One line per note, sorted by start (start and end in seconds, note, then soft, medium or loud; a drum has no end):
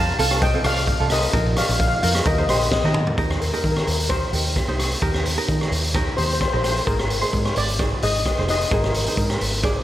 0.00 0.11 F2 loud
0.00 0.18 F5 medium
0.00 0.18 A5 loud
0.19 0.54 C2 medium
0.19 0.40 C4 medium
0.19 0.40 F4 medium
0.19 0.40 A4 medium
0.19 0.41 F5 medium
0.19 0.43 A5 medium
0.19 closed hi-hat medium
0.31 cross-stick medium
0.31 closed hi-hat medium
0.42 0.64 D#5 medium
0.42 0.66 G5 loud
0.42 kick loud
0.42 closed hi-hat medium
0.54 0.61 C4 medium
0.54 0.61 F4 medium
0.54 0.61 A4 medium
0.64 0.91 C2 medium
0.64 0.86 C4 medium
0.64 0.86 F4 medium
0.64 0.86 A4 medium
0.64 1.09 D5 medium
0.64 1.13 F5 loud
0.64 cross-stick medium
0.64 closed hi-hat medium
0.76 closed hi-hat medium
0.87 kick medium
0.87 closed hi-hat medium
1.00 1.26 C2 medium
1.00 1.21 C4 medium
1.00 1.21 F4 medium
1.00 1.21 A4 medium
1.10 1.55 A#4 medium
1.10 1.59 D#5 medium
1.10 cross-stick medium
1.10 closed hi-hat medium
1.22 closed hi-hat medium
1.33 1.61 A#1 loud
1.33 1.75 D#4 medium
1.33 1.75 F4 medium
1.33 1.75 A#4 medium
1.33 kick loud
1.33 closed hi-hat medium
1.57 1.65 D5 medium
1.57 1.65 F5 medium
1.57 cross-stick medium
1.57 closed hi-hat medium
1.66 1.95 A#1 loud
1.66 1.72 F5 medium
1.66 closed hi-hat medium
1.73 1.78 F5 medium
1.80 1.86 F5 medium
1.80 kick medium
1.80 closed hi-hat medium
1.88 1.94 F5 medium
1.95 2.02 F5 medium
2.02 2.21 F2 medium
2.02 2.24 D#4 medium
2.02 2.24 F4 medium
2.02 2.24 A#4 medium
2.02 2.10 F5 medium
2.02 closed hi-hat medium
2.11 2.19 F5 medium
2.11 cross-stick medium
2.11 closed hi-hat medium
2.25 2.44 D#2 loud
2.25 2.36 D#4 medium
2.25 2.36 G4 medium
2.25 2.36 A#4 medium
2.25 2.34 A#4 medium
2.25 2.33 D#5 medium
2.25 kick loud
2.25 closed hi-hat medium
2.34 2.45 D#4 medium
2.34 2.41 D#5 medium
2.39 2.45 G4 medium
2.39 2.45 C5 medium
2.39 2.48 D#5 medium
2.48 2.75 A#1 medium
2.48 2.70 D#4 medium
2.48 2.70 G4 medium
2.48 2.70 C5 medium
2.48 2.56 D#5 medium
2.48 cross-stick medium
2.48 closed hi-hat medium
2.57 2.64 D#5 medium
2.57 closed hi-hat medium
2.66 2.71 D#5 medium
2.71 2.78 D#5 medium
2.71 kick medium
2.71 snare medium
2.79 2.87 D#5 medium
2.84 3.10 D#3 medium
2.84 3.05 D#4 medium
2.84 3.06 G4 medium
2.84 3.06 A#4 medium
2.94 mid tom loud
3.07 floor tom medium
3.18 3.53 D#2 loud
3.18 3.39 D#4 medium
3.18 3.39 G4 medium
3.18 3.39 A#4 loud
3.18 kick loud
3.18 closed hi-hat medium
3.31 cross-stick medium
3.41 3.48 A#4 medium
3.41 closed hi-hat medium
3.49 3.57 A#4 medium
3.53 3.87 D#4 medium
3.53 3.88 G4 medium
3.53 3.88 A#4 medium
3.53 closed hi-hat medium
3.58 3.63 A#4 medium
3.64 3.82 D#3 loud
3.64 3.70 A#4 medium
3.64 kick medium
3.64 closed hi-hat medium
3.72 3.77 A#4 medium
3.76 3.85 A#4 medium
3.76 cross-stick medium
3.86 4.22 D#2 medium
3.86 3.93 A#4 medium
3.86 closed hi-hat medium
3.94 4.02 A#4 medium
4.00 closed hi-hat medium
4.09 4.25 D#4 medium
4.09 4.25 G4 soft
4.09 4.25 A#4 medium
4.09 4.53 C5 loud
4.09 kick loud
4.09 cross-stick medium
4.09 closed hi-hat medium
4.33 4.60 D#2 medium
4.33 4.55 D#4 medium
4.33 4.55 G4 medium
4.33 4.55 A#4 medium
4.33 closed hi-hat medium
4.46 closed hi-hat medium
4.56 kick medium
4.56 cross-stick medium
4.56 closed hi-hat medium
4.68 4.94 C2 medium
4.68 4.89 D#4 medium
4.68 4.90 G4 medium
4.68 4.89 C5 medium
4.79 cross-stick medium
4.79 closed hi-hat medium
4.92 closed hi-hat medium
5.02 5.37 D#2 loud
5.02 5.23 D#4 medium
5.02 5.23 G4 medium
5.02 5.23 A#4 medium
5.02 kick loud
5.02 closed hi-hat medium
5.14 cross-stick medium
5.26 closed hi-hat medium
5.37 5.72 D#4 medium
5.37 5.72 G4 medium
5.37 5.72 A#4 loud
5.37 closed hi-hat medium
5.48 5.66 D#3 medium
5.48 kick medium
5.48 closed hi-hat medium
5.61 cross-stick medium
5.71 6.07 D#2 medium
5.71 closed hi-hat medium
5.84 closed hi-hat medium
5.94 6.10 D#4 medium
5.94 6.10 G4 medium
5.94 6.10 A#4 medium
5.94 kick loud
5.94 cross-stick medium
5.94 closed hi-hat medium
6.17 6.45 D#2 medium
6.17 6.39 D#4 medium
6.17 6.39 G4 medium
6.17 6.25 C5 loud
6.17 6.39 C5 medium
6.17 closed hi-hat medium
6.26 6.32 C5 medium
6.30 6.40 C5 medium
6.30 closed hi-hat medium
6.41 6.47 C5 medium
6.41 kick medium
6.41 cross-stick medium
6.41 closed hi-hat medium
6.48 6.56 C5 medium
6.53 6.79 A#1 medium
6.53 6.74 D#4 medium
6.53 6.74 G4 soft
6.53 6.74 A#4 medium
6.57 6.62 C5 medium
6.63 6.69 C5 medium
6.63 cross-stick medium
6.63 closed hi-hat medium
6.70 6.79 C5 medium
6.77 closed hi-hat soft
6.87 7.22 G#1 loud
6.87 7.08 D#4 medium
6.87 7.08 G#4 medium
6.87 7.30 A#4 loud
6.87 7.08 C5 medium
6.87 kick loud
6.87 closed hi-hat medium
6.99 cross-stick medium
7.10 closed hi-hat medium
7.21 7.56 D#4 medium
7.21 7.56 G#4 medium
7.21 7.56 C5 medium
7.21 closed hi-hat soft
7.33 7.51 G#2 loud
7.33 kick medium
7.33 closed hi-hat medium
7.45 cross-stick medium
7.56 7.92 G#1 medium
7.56 8.04 D5 medium
7.56 closed hi-hat medium
7.68 closed hi-hat medium
7.79 7.94 D#4 medium
7.79 7.94 G#4 soft
7.79 7.94 C5 medium
7.79 kick loud
7.79 cross-stick medium
7.79 closed hi-hat medium
8.02 8.30 G#1 medium
8.02 8.23 D#4 medium
8.02 8.24 G#4 medium
8.02 8.24 C5 medium
8.02 8.49 D#5 loud
8.02 closed hi-hat medium
8.15 closed hi-hat medium
8.26 kick medium
8.26 cross-stick medium
8.26 closed hi-hat medium
8.38 8.64 F1 medium
8.38 8.58 D#4 medium
8.38 8.59 G#4 medium
8.38 8.59 C5 medium
8.48 8.73 D#5 loud
8.48 cross-stick medium
8.48 closed hi-hat medium
8.61 closed hi-hat medium
8.71 9.07 G#1 loud
8.71 8.92 D#4 medium
8.71 8.93 G#4 medium
8.71 8.80 A#4 medium
8.71 8.93 C5 medium
8.71 kick loud
8.71 closed hi-hat medium
8.82 8.88 A#4 medium
8.82 cross-stick medium
8.89 8.94 A#4 medium
8.94 9.02 A#4 medium
8.94 closed hi-hat medium
9.04 9.10 A#4 medium
9.04 closed hi-hat medium
9.08 9.41 D#4 medium
9.08 9.41 G#4 medium
9.08 9.17 A#4 medium
9.08 9.41 C5 medium
9.17 9.35 G#2 loud
9.17 9.25 A#4 medium
9.17 kick medium
9.17 closed hi-hat medium
9.26 9.33 A#4 medium
9.26 cross-stick medium
9.41 9.76 G#1 medium
9.41 closed hi-hat medium
9.53 closed hi-hat medium
9.63 9.78 D#4 medium
9.63 9.78 G#4 medium
9.63 9.78 D5 medium
9.63 kick loud
9.63 cross-stick medium
9.63 closed hi-hat medium